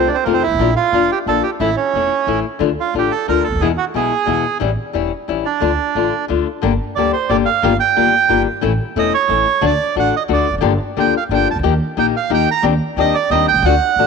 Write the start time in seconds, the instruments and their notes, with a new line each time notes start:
Already playing: nylon-string guitar A3 C4 F4
0.08 bandoneon D4
0.14 bandoneon C4
0.24 upright bass F2, nylon-string guitar C3 D#3 A3 C4 F4, bandoneon A#3
0.33 bandoneon C4
0.43 bandoneon E4
0.47 upright bass G1
0.51 upright bass G#1 A1
0.59 upright bass A#1, nylon-string guitar F3 A#3 D4 F4
0.76 bandoneon F4
0.92 upright bass F1, nylon-string guitar F3 A#3 D4 F4
1.12 bandoneon G4
1.26 upright bass A#1, nylon-string guitar F3 A#3 D4 F4, bandoneon A4
1.43 bandoneon G4
1.60 upright bass A1, nylon-string guitar E3 A3 C#4 E4, bandoneon E4
1.76 bandoneon C#4
1.94 upright bass E1, nylon-string guitar E3 A3 C#4 E4
2.27 upright bass A1, nylon-string guitar E3 A3 C#4 E4
2.59 upright bass D2, nylon-string guitar D3 A3 D4 F4
2.80 bandoneon F4
2.94 upright bass A1, nylon-string guitar D3 A3 D4 F4
2.98 bandoneon G4
3.11 bandoneon A4
3.28 upright bass D2, nylon-string guitar D3 A3 D4 F4, bandoneon A#4
3.44 upright bass C#2, bandoneon A4
3.52 upright bass D2 D#2
3.60 upright bass E2, nylon-string guitar B2 E3 G#3 B3 E4, bandoneon G#4
3.78 bandoneon F#4
3.94 upright bass B1, nylon-string guitar B2 E3 G#3 B3 E4, bandoneon G#4
4.26 upright bass E2, nylon-string guitar B2 E3 G#3 B3 E4
4.60 upright bass A1, nylon-string guitar E3 G3 C#4 E4
4.93 upright bass E1, nylon-string guitar E3 G3 C#4 E4
5.28 upright bass A1, nylon-string guitar E3 G3 C#4 E4
5.46 bandoneon D4
5.60 upright bass D2, nylon-string guitar D3 A3 D4 F4
5.95 upright bass A1, nylon-string guitar D3 A3 D4 F4
6.28 upright bass D2, nylon-string guitar D3 A3 D4 F4
6.62 upright bass G1, nylon-string guitar D3 G3 A#3 D4 G4
6.95 upright bass D2, nylon-string guitar D3 G3 A#3 D4 G4, bandoneon D5
7.13 bandoneon C5
7.29 upright bass G1, nylon-string guitar D3 G3 A#3 D4 G4, bandoneon D5
7.46 bandoneon F5
7.62 upright bass G1, nylon-string guitar D#3 G3 A#3 F4 G4
7.80 bandoneon G5
7.96 upright bass G1, nylon-string guitar D#3 G3 A#3 F4 G4
8.28 upright bass G1, nylon-string guitar D#3 G3 A#3 F4 G4
8.61 upright bass A1, nylon-string guitar E3 A3 C#4 E4
8.96 upright bass E1, nylon-string guitar E3 A3 C#4 E4, bandoneon D#5
9.14 bandoneon C#5
9.28 upright bass A1, nylon-string guitar E3 A3 C#4 E4
9.61 upright bass D2, nylon-string guitar D3 A3 D4 F#4
9.66 bandoneon D5
9.96 upright bass A1, nylon-string guitar D3 A3 D4 F#4, bandoneon F#5
10.16 bandoneon D#5
10.28 upright bass D2, nylon-string guitar D3 A3 D4 F#4
10.33 bandoneon D5
10.50 upright bass E1 F1
10.58 upright bass F#1 G1, nylon-string guitar D3 F3 A#3 D4
10.62 nylon-string guitar G4
10.97 upright bass D2, nylon-string guitar D3 F3 A#3 D4 G4, bandoneon G5
11.17 bandoneon F5
11.29 upright bass G1, nylon-string guitar D3 F3 A#3 D4 G4
11.34 bandoneon G5
11.51 upright bass C2, bandoneon A5
11.56 upright bass C#2 D2
11.63 upright bass D#2, nylon-string guitar D#3 A#3 D#4 G4
11.97 upright bass A#1, nylon-string guitar D#3 A#3 D#4 G4, bandoneon G5
12.17 bandoneon F5
12.30 upright bass D#2, nylon-string guitar D#3 A#3 D#4 G4, bandoneon G5
12.51 bandoneon A#5
12.62 upright bass D#2, nylon-string guitar D#3 G3 C4 D4 G4
12.96 upright bass D#2, nylon-string guitar D#3 G3 C4 D4 G4, bandoneon D#5
13.15 bandoneon D5
13.30 upright bass D#2, nylon-string guitar D#3 G3 C4 D4 G4, bandoneon D#5
13.48 upright bass B1, bandoneon G5
13.54 upright bass C2
13.58 upright bass C#2
13.62 upright bass D2, nylon-string guitar D3 A3 D4 F#4, bandoneon F#5
13.96 upright bass A1, nylon-string guitar D3 A3 D4 F#4